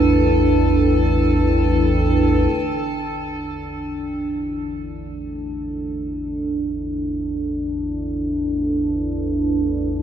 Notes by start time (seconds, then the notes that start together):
Already playing: A1 E2 D4 E4 A4 B4
2.54 A1 E2 D4
3.18 E4
4.51 A4
8.09 B4